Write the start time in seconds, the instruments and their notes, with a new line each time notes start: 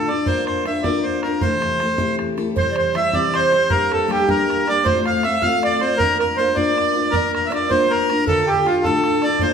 0.08 steel-string acoustic guitar D3 D4 F4 A4, accordion D5, bodhran
0.26 steel-string acoustic guitar A#3 D4 F4 A#4, accordion C5, bodhran
0.38 bodhran
0.46 accordion C5, bodhran
0.65 steel-string acoustic guitar A#3 D4 F4 A#4, accordion E5, bodhran
0.83 steel-string acoustic guitar A#3 D4 F4 A#4, accordion D5, bodhran
1.03 accordion C5
1.22 steel-string acoustic guitar F4 A#4, accordion A#4, bodhran
1.27 steel-string acoustic guitar D4
1.41 steel-string acoustic guitar C3 E3 A3 E4 G4 A4, accordion C5, bodhran
1.62 bodhran
1.80 steel-string acoustic guitar A3 E4 G4 A4, bodhran
1.98 steel-string acoustic guitar C3 E3 A3 E4 G4 A4, bodhran
2.19 bodhran
2.37 steel-string acoustic guitar A3 E4 G4 A4, bodhran
2.56 steel-string acoustic guitar C3 E3 G3 C4 G4, recorder C5, accordion C5, bodhran
2.67 bodhran
2.71 recorder D5
2.76 recorder C5, accordion C5, bodhran
2.94 steel-string acoustic guitar E3 G3 C4 G4, recorder E5, accordion E5, bodhran
3.13 steel-string acoustic guitar C3 E3 G3 C4 G4, recorder D5, accordion D5, bodhran
3.34 recorder C5, accordion C5, bodhran
3.52 steel-string acoustic guitar G3 C4 G4, bodhran
3.69 steel-string acoustic guitar G3 A#3 D4 G4, recorder A#4, accordion A#4, bodhran
3.92 recorder A4, accordion A4, bodhran
4.08 steel-string acoustic guitar G3 A#3 D4 G4, recorder G4, accordion G4, bodhran
4.27 steel-string acoustic guitar G3 A#3 D4 G4, recorder A#4, accordion A#4, bodhran
4.50 bodhran
4.67 steel-string acoustic guitar A#3 D4 G4, recorder D5, accordion D5, bodhran
4.84 steel-string acoustic guitar A2 A3 C4 F4 A4, recorder C5, accordion C5, bodhran
5.05 recorder F5, accordion F5, bodhran
5.23 steel-string acoustic guitar A3 C4 F4 A4, accordion E5, bodhran
5.41 steel-string acoustic guitar A2 A3 C4 F4 A4, recorder F5, accordion F5, bodhran
5.62 recorder D5, accordion D5, bodhran
5.79 steel-string acoustic guitar C4 F4 A4, accordion C5, bodhran
5.98 steel-string acoustic guitar A#3 D4 F4 A#4, accordion A#4, recorder A#4, bodhran
6.19 recorder A#4, accordion A#4, bodhran
6.36 steel-string acoustic guitar A#3 D4 F4 A#4, recorder C5, accordion C5, bodhran
6.54 steel-string acoustic guitar A#3 D4 F4 A#4, recorder D5, accordion D5, bodhran
6.78 bodhran
6.93 steel-string acoustic guitar D4 F4 A#4
7.10 steel-string acoustic guitar A#3 D4 F4 A#4, recorder A#4, accordion A#4, bodhran
7.25 bodhran
7.32 recorder A#4, accordion A#4, bodhran
7.46 steel-string acoustic guitar A#3, accordion E5
7.51 steel-string acoustic guitar D4 F4 A#4, recorder D5, bodhran
7.55 accordion D5
7.69 steel-string acoustic guitar A#3 D4 F4 A#4, recorder C5, accordion C5, bodhran
7.90 accordion A#4, recorder A#4, bodhran
8.09 steel-string acoustic guitar D4 F4 A#4, bodhran
8.26 steel-string acoustic guitar D2 A2 D3 D4 F4 A4, recorder A4, accordion A4, bodhran
8.46 recorder G4, accordion G4, bodhran
8.65 steel-string acoustic guitar D3 D4 F4 A4, recorder F4, accordion F4, bodhran
8.83 steel-string acoustic guitar D2 A2 D3 D4 F4 A4, recorder A4, accordion A4, bodhran
9.04 bodhran
9.22 steel-string acoustic guitar D3 D4 F4 A4, accordion D5, bodhran
9.39 steel-string acoustic guitar A#3 D4 F4 A#4, recorder C5, accordion C5, bodhran